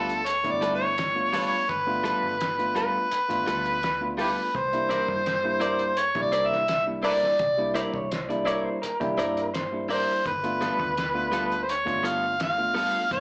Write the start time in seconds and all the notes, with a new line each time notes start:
Already playing: D2 G3 A3 B3 D4 F4 A4 B4
0.09 closed hi-hat
0.26 C#5, closed hi-hat
0.44 G1 A3 B3 D4 E4, kick, closed hi-hat
0.51 D5
0.61 G3 F4 A4 B4, closed hi-hat
0.75 C#5
0.98 snare, closed hi-hat
1.15 A3 B3 D4 F4
1.33 G3 F4 A4 B4, snare, open hi-hat
1.47 C#5
1.69 G1 B4, kick, closed hi-hat
1.86 A3 B3 D4 F4
2.03 G3 F4 A4 B4, closed hi-hat
2.23 G1
2.41 snare, closed hi-hat
2.58 A3 B3 D4 F4, closed hi-hat
2.75 G3 F4 A4 B4, closed hi-hat
3.12 muted fingered electric bass stroke, closed hi-hat
3.29 G1 A3 B3 D4 F4, closed hi-hat
3.46 D2 G3 F4 A4 B4, closed hi-hat
3.65 closed hi-hat
3.83 snare, closed hi-hat
4.01 A3 B3 D4 F4
4.17 G3 E4 F4 G4 A4 B4, open hi-hat
4.55 C2 C5, kick, closed hi-hat
4.72 G3 A#3 D4 E4, closed hi-hat
4.89 C4 E4 A#4 D5, snare, closed hi-hat
5.08 G2, kick
5.26 snare, closed hi-hat
5.44 G3 A#3 D4 E4
5.60 C4 E4 A#4 D5, closed hi-hat
5.79 closed hi-hat
5.97 C#5, closed hi-hat
6.15 C2 G3 A#3 D4 E4, kick, closed hi-hat
6.22 D5
6.32 C4 E4 A#4 D5, closed hi-hat
6.46 E5
6.53 snare
6.68 E5, snare, closed hi-hat
6.86 G3 A#3 D4 E4
7.03 C4 E4 A4 A#4 B4 D5, open hi-hat
7.23 snare
7.39 C2, kick, closed hi-hat
7.57 G3 A#3 D4 E4
7.74 C4 E4 A#4 D5, closed hi-hat
7.94 C2 C#5, kick
8.10 C5, snare, closed hi-hat
8.29 G3 A#3 D4 E4 D5, closed hi-hat
8.45 C4 E4 A#4 C#5 D5, closed hi-hat
8.64 C5
8.82 A#4, muted fingered electric bass stroke, closed hi-hat
9.00 C2 G3 A#3 D4 E4 G4, kick, closed hi-hat
9.17 G2 C4 E4 A#4 D5, closed hi-hat
9.37 closed hi-hat
9.54 C5, snare, closed hi-hat
9.72 G3 A#3 D4 E4
9.89 C4 E4 A#4 C5 D5, open hi-hat
10.26 G1 B4, kick, closed hi-hat
10.43 A3 B3 D4 F4, closed hi-hat
10.61 G3 B3 F4 A4, snare, closed hi-hat
10.79 D2, kick
10.97 snare, closed hi-hat
11.14 A3 B3 D4 F4
11.32 G3 B3 F4 A4, closed hi-hat
11.52 closed hi-hat
11.63 C5
11.69 C#5, closed hi-hat
11.85 G1 A3 B3 D4 F4, kick, closed hi-hat
12.03 G3 B3 F4 A4 F5, closed hi-hat
12.40 F5, snare, closed hi-hat
12.58 A3 B3 D4 F4
12.74 G3 B3 F4 A4, open hi-hat
13.11 G1 D5, kick, closed hi-hat